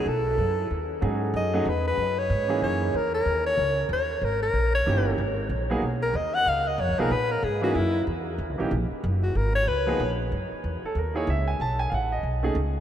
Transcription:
0.06 B1 A4
0.38 F#2
0.70 D#2
1.01 G#2 F#3 C#4 D#4 G#4 A4
1.34 F#2 D#5
1.53 F#3 A3 C#4 D#4 G#4
1.65 E2 B4
1.88 B4
1.97 F#2
2.19 C#5
2.30 G#2
2.48 E3 A#3 C#4 D#4 G#4
2.62 F#2 C#5
2.94 E2 A#4
3.14 A#4
3.26 D#2
3.46 C#5
3.58 C#2
3.89 D#2
3.93 C#5
4.22 G#1 A#4
4.43 A#4
4.54 A#1
4.75 C#5
4.86 G1 E3 A#3 C#4 D#4 G4
5.18 G#1
5.50 A#1
5.70 F#3 A#3 B3 D#4 G#4
5.82 B1
6.03 A#4
6.14 D#2 D#5
6.35 F#5
6.46 C#2 F5
6.68 D#5
6.78 F2 C#5
6.89 C#2
6.98 B1 F3 A#3 B3 D#4 G#4 A#4
7.11 A#2 B4
7.31 A#4
7.43 G#2 G#4
7.61 E3 A#3 C#4 D#4 F#4 G#4
7.75 F#2 E4
8.07 E2
8.38 D#2
8.50 C#2
8.58 A#1 E3 A#3 C#4 D#4 G4
8.71 A#1
8.91 muted upright bass stroke
9.04 F#1
9.23 F#4
9.35 G#1 A#4
9.55 C#5
9.67 C#2 B4
9.86 F3 A#3 B3 D#4 G#4
10.00 A#1
10.32 F#2
10.51 muted upright bass stroke
10.64 E2
10.83 A4, muted upright bass stroke
10.95 D#2 A#4
11.14 A#3 D#4 E4 G#4 C#5
11.27 C#2 E5
11.48 G#5
11.60 B1 A5
11.79 G#5
11.90 A1 F5
11.94 F#5
12.12 D#5
12.23 B1
12.43 A3 C#4 D#4 G#4
12.55 C#2

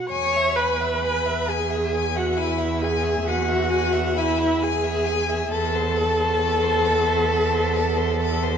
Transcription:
0.09 E2 C#5 G#5 C#6
0.36 E5
0.55 B4 G#5 B5
0.81 E5
1.05 G#5
1.26 E5
1.48 G#4 G#5
1.70 E5
1.94 G#5
2.16 F#4 E5 F#5
2.37 E4 E5 G#5
2.59 E5
2.82 G#4 G#5
3.04 E5
3.27 F#4 F#5 G#5
3.49 E5
3.70 G#5
3.93 E5
4.17 E4 E5 G#5
4.39 E5
4.60 G#4 G#5
4.84 E5
5.06 G#5
5.29 E5
5.51 E2 A4 A5
5.75 C5
5.96 A4
6.20 C5
6.40 A4
6.63 C5
6.85 A4
7.07 C5
7.30 A4
7.53 C5
7.76 A4
7.97 C5
8.21 A4
8.43 C5

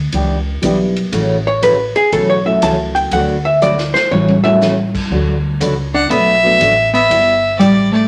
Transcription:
0.12 C#2 E3 B3 D4 G4, kick, ride
0.62 B1 E3 G3 B3 D4 E4 G4, kick, hi-hat pedal, ride
0.96 ride
1.12 A1 C#3 E3 A3 C#4 F#4, kick, ride
1.47 C#5
1.62 C#3 E3 A3 C#4 F#4 B4, kick, hi-hat pedal, ride
1.96 G#4, ride
2.12 B1 C#3 E3 A3 C#4 F#4 A4, kick, ride
2.30 C#5
2.45 F#3 A3 C#4 E4 F#4 E5
2.62 C#2 C#3 E3 A3 C#4 F#4 A5, kick, hi-hat pedal, ride
2.95 G5, ride
3.11 D2 D3 F#3 A3 D4 F#4 B4 F#5, kick, ride
3.45 E5
3.61 D3 F#3 A3 D4 F#4 B4 D5, hi-hat pedal
3.78 snare
3.94 C5, snare
4.11 A1 C#3 E3 A3 C#4 F#4 C#5, high tom
4.29 high tom
4.44 F#3 A3 C#4 E4 F#4 E5, high tom
4.61 C#3 E3 A3 C#4 F#4, snare, hi-hat pedal
4.95 kick, crash
5.11 D2 D3 F#3 A3 D4 F#4 B4, kick
5.60 C#2 D3 F#3 A3 D4 F#4 B4, kick, hi-hat pedal, ride
5.94 D4 F#5
6.10 B1 D3 F#3 A3 B3 D4 F#4 B4 E5, kick, ride
6.43 F#3 A3 B3 D4 F#4
6.60 A1 D3 F#3 A3 D4 F#4 B4, kick, hi-hat pedal, ride
6.94 B3 E5, ride
7.10 G1 G3 B3 E4 G4, kick, ride
7.59 A1 G3 B3 E4 G4 D5, kick, hi-hat pedal, ride
7.93 A3 D5

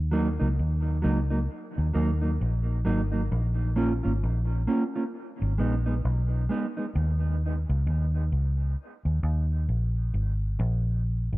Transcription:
Already playing: D#2
0.11 F#3 A#3 D#4
0.39 C#2 F#3 A#3 D#4
0.59 D#2
1.02 C#2 F#3 A#3 D#4
1.30 F#3 A#3 D#4
1.78 D#2
1.93 D#2 F#3 A#3 D#4
2.22 F#3 A#3 D#4
2.41 A#1
2.85 G#1 F#3 A#3 D#4
3.12 F#3 A#3 D#4
3.32 A#1
3.76 A#3 C#4 F4
4.03 G#1 A#3 C#4 F4
4.23 A#1
4.67 A#3 C#4 F4
4.96 A#3 C#4 F4
5.42 G#1
5.58 A#1 G#3 B3 D#4
5.86 G#3 B3 D#4
6.05 B1
6.49 G#3 B3 D#4
6.77 G#3 B3 D#4
6.95 D#2
7.69 C#2
7.87 D#2
8.32 C#2
9.05 D#2
9.23 D#2
9.69 A#1
10.14 G#1
10.59 A#1
11.33 G#1

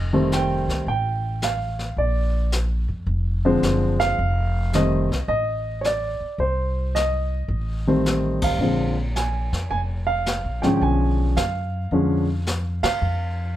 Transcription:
Already playing: F1 D#5
0.13 D#3 G3 A3 C4
0.32 G5, snare, hi-hat pedal
0.68 C2, snare
0.87 A1 G5, brush sweep
1.42 F5, snare, hi-hat pedal
1.79 snare
1.97 A#1 D5, brush sweep
2.52 snare, hi-hat pedal
2.88 F2
3.07 F1, brush sweep
3.45 D3 F3 G#3 C4
3.62 F#1, snare, hi-hat pedal
4.00 F5, snare
4.18 F1, brush sweep
4.73 D#3 G3 A3 C4 D#5, snare, hi-hat pedal
5.10 C2, snare
5.28 A1 D#5, brush sweep
5.81 C#5, snare, hi-hat pedal
5.86 D5
6.20 muted upright bass stroke
6.38 C2 C5, brush sweep
6.95 D#5, snare, hi-hat pedal
7.48 A1, brush sweep
7.87 D#3 G3 A3 C4
8.06 snare, hi-hat pedal
8.42 F5, kick, ride
8.58 A#1 D3 F3 G#3, brush sweep
8.62 C4
9.16 G#5, snare, hi-hat pedal
9.52 F2, snare
9.70 F1 G#5, brush sweep
10.07 F5
10.26 snare, hi-hat pedal
10.44 A#1
10.62 G#1 D3 F3 G#3 C#4 G5, snare
10.77 G5
10.81 B1 G#5, brush sweep
11.37 F#2 F5, snare, hi-hat pedal
11.91 F2 D3 F3 G#3 C#4, brush sweep
12.47 snare, hi-hat pedal
12.83 C3 F5, snare, ride
13.01 F2, brush sweep

